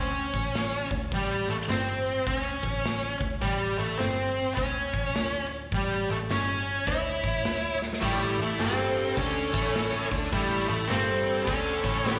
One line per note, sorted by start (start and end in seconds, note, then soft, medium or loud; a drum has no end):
0.00 0.31 D2 medium
0.00 0.88 C#4 medium
0.33 0.87 A1 medium
0.33 kick medium
0.33 open hi-hat soft
0.54 snare medium
0.54 open hi-hat medium
0.91 1.11 D2 medium
0.91 kick medium
0.91 open hi-hat soft
1.12 1.46 A1 medium
1.12 1.50 G3 medium
1.12 kick medium
1.12 open hi-hat medium
1.48 1.68 A1 medium
1.48 1.55 A3 medium
1.48 open hi-hat soft
1.69 2.23 G1 medium
1.69 2.23 C4 medium
1.69 snare medium
1.69 open hi-hat medium
2.06 open hi-hat soft
2.27 2.61 D2 medium
2.27 2.38 C4 medium
2.27 kick medium
2.27 open hi-hat medium
2.38 3.17 C#4 medium
2.63 3.17 A1 medium
2.63 kick medium
2.63 open hi-hat soft
2.85 snare medium
2.85 open hi-hat medium
3.20 3.40 D2 medium
3.20 kick medium
3.20 open hi-hat soft
3.41 3.76 A1 medium
3.41 3.77 G3 medium
3.41 kick medium
3.41 open hi-hat medium
3.78 3.98 A1 medium
3.78 3.97 A3 medium
3.78 open hi-hat soft
3.98 4.54 G1 medium
3.98 4.52 C4 medium
3.98 snare medium
3.98 open hi-hat medium
4.36 open hi-hat soft
4.54 4.91 D2 medium
4.54 5.46 C#4 medium
4.54 kick medium
4.54 open hi-hat medium
4.94 5.13 A1 medium
4.94 kick medium
4.94 open hi-hat soft
5.15 5.68 D2 medium
5.15 snare medium
5.15 open hi-hat medium
5.51 open hi-hat soft
5.72 6.06 A1 medium
5.72 6.11 G3 medium
5.72 kick loud
5.72 open hi-hat medium
6.09 6.28 A1 medium
6.09 6.16 A3 medium
6.09 open hi-hat soft
6.29 6.83 G1 medium
6.29 6.90 C#4 medium
6.29 snare medium
6.29 open hi-hat medium
6.66 open hi-hat soft
6.87 7.21 D2 medium
6.87 7.77 E4 medium
6.87 7.78 C#5 medium
6.87 kick medium
6.87 open hi-hat medium
7.24 7.43 A1 medium
7.24 kick loud
7.24 open hi-hat soft
7.44 7.98 D2 medium
7.44 snare medium
7.44 open hi-hat medium
7.82 snare soft
7.93 snare medium
8.02 8.36 A1 medium
8.02 8.37 A2 medium
8.02 8.38 G3 medium
8.02 8.38 A3 medium
8.02 8.38 E4 medium
8.02 kick loud
8.02 open hi-hat medium
8.38 8.58 A1 medium
8.38 8.55 A2 medium
8.38 8.59 A3 medium
8.38 open hi-hat soft
8.43 8.60 E4 medium
8.58 9.13 G1 medium
8.58 9.16 G2 medium
8.58 9.16 G3 medium
8.58 9.14 C4 medium
8.58 9.15 A4 medium
8.58 snare medium
8.58 open hi-hat medium
8.96 open hi-hat soft
9.17 9.51 D2 medium
9.17 9.53 D3 medium
9.17 10.08 C#4 medium
9.17 9.53 D4 medium
9.17 10.08 A4 medium
9.17 kick medium
9.17 open hi-hat medium
9.53 10.07 A1 medium
9.53 10.10 A2 medium
9.53 10.10 A3 medium
9.53 kick loud
9.53 open hi-hat soft
9.75 snare loud
9.75 open hi-hat medium
10.11 10.31 D2 medium
10.11 10.32 D3 medium
10.11 10.32 D4 medium
10.11 kick medium
10.11 open hi-hat soft
10.32 10.66 A1 medium
10.32 10.68 A2 medium
10.32 10.68 G3 medium
10.32 10.68 A3 medium
10.32 10.68 E4 medium
10.32 kick medium
10.32 open hi-hat medium
10.68 10.89 A1 medium
10.68 10.86 A2 medium
10.68 10.89 A3 medium
10.68 10.88 E4 medium
10.68 open hi-hat soft
10.88 11.44 G1 medium
10.88 11.47 G2 medium
10.88 11.47 G3 loud
10.88 11.42 C4 medium
10.88 11.42 A4 medium
10.88 snare medium
10.88 open hi-hat medium
11.27 open hi-hat soft
11.44 11.81 D2 medium
11.44 11.83 D3 medium
11.44 12.10 C#4 medium
11.44 11.83 D4 medium
11.44 12.10 A4 medium
11.44 kick medium
11.44 open hi-hat medium
11.84 12.19 A1 medium
11.84 12.19 A2 medium
11.84 12.19 A3 medium
11.84 kick medium
11.84 open hi-hat soft
12.05 snare loud
12.05 open hi-hat medium
12.10 12.19 B3 medium
12.10 12.19 G4 medium